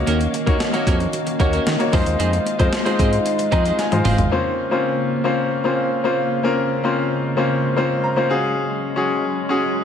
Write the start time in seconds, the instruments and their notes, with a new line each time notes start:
Already playing: ambient pad D#3 A#3 C#4 F#4 F5, grand piano A#3 D#4 F#4 C#5
0.07 analog synth bass D#2, clean electric guitar A#3 C#4 F#4 A#4, closed hi-hat
0.20 muted clean electric guitar stroke, closed hi-hat
0.33 muted clean electric guitar stroke, closed hi-hat
0.46 analog synth bass D#2, grand piano A#3 D#4 F#4 C#5, clean electric guitar A#3 C#4 F#4 A#4, kick, closed hi-hat
0.60 snare, closed hi-hat
0.73 grand piano A#3 D#4 F#4 C#5, clean electric guitar A#3 C#4 F#4 A#4, closed hi-hat
0.86 analog synth bass F2, clean electric guitar A#3 C#4 F#4 A#4, kick, closed hi-hat
1.00 muted clean electric guitar stroke, closed hi-hat
1.13 muted clean electric guitar stroke, closed hi-hat
1.27 muted clean electric guitar stroke, closed hi-hat
1.39 analog synth bass D#2, grand piano A#3 D#4 F#4 C#5, clean electric guitar A#3 C#4 F#4 A#4, kick, closed hi-hat
1.53 clean electric guitar A#3 C#4 F#4 A#4, closed hi-hat
1.67 analog synth bass D#3, muted clean electric guitar stroke, snare, closed hi-hat
1.79 grand piano A#3 D#4 F#4 C#5, muted clean electric guitar stroke, closed hi-hat
1.93 analog synth bass F2, grand piano G#3 D#4 F4 C5, ambient pad G#3 D#4, clean electric guitar C4 D#4 G#4 C5, kick, open hi-hat
2.06 analog synth bass D#2, muted clean electric guitar stroke, closed hi-hat
2.19 analog synth bass F2, clean electric guitar C4 D#4 G#4 C5, closed hi-hat
2.33 muted clean electric guitar stroke, closed hi-hat
2.46 muted clean electric guitar stroke, closed hi-hat
2.59 analog synth bass F2, grand piano G#3 D#4 F4 C5, clean electric guitar C4 D#4 G#4 C5, kick, closed hi-hat
2.73 muted clean electric guitar stroke, snare, closed hi-hat
2.85 grand piano G#3 D#4 F4 C5, clean electric guitar C4 D#4 G#4 C5, closed hi-hat
2.99 analog synth bass G#2, clean electric guitar C4 D#4 G#4 C5, kick, closed hi-hat
3.12 muted clean electric guitar stroke, closed hi-hat
3.25 muted clean electric guitar stroke, closed hi-hat
3.39 muted clean electric guitar stroke, closed hi-hat
3.52 analog synth bass F2, grand piano G#3 D#4 F4 D#5 A#5, clean electric guitar C4 D#4 G#4 C5, kick, closed hi-hat
3.65 clean electric guitar C4 D#4 G#4 C5, closed hi-hat
3.78 grand piano G#5, muted clean electric guitar stroke, snare, closed hi-hat
3.92 analog synth bass G#2, grand piano G#3 D#4 F4 C5, muted clean electric guitar stroke, closed hi-hat, high tom
4.05 analog synth bass F#1, clean electric guitar C4 D#4 G#4 C5, grand piano F5, mid tom, open hi-hat
4.18 analog synth bass G#1, muted clean electric guitar stroke, closed hi-hat, floor tom
4.31 ambient pad C#3 A#3 C5, grand piano A#3 C4 C#4 F4 C5
4.71 grand piano A#3 C4 C#4 F4 C5
5.24 grand piano A#3 C4 C#4 F4 C5
5.64 grand piano A#3 C4 C#4 F4 C5
6.04 grand piano A#3 C4 C#4 F4 C5
6.43 ambient pad G#3, grand piano A#3 C4 C#4 F4 A#4
6.84 grand piano A#3 C4 C#4 F4 C5
7.37 grand piano A#3 C4 C#4 F4 C5
7.76 grand piano A#3 C4 C#4 F4 C5
8.04 grand piano A#5
8.16 grand piano A#3 C4 C#4 F4 C5
8.30 ambient pad F#3 G#3 C#4, grand piano C#4 F#4 G#4 F5
8.96 grand piano C#4 F#4 G#4
9.49 grand piano C#4 F#4 G#4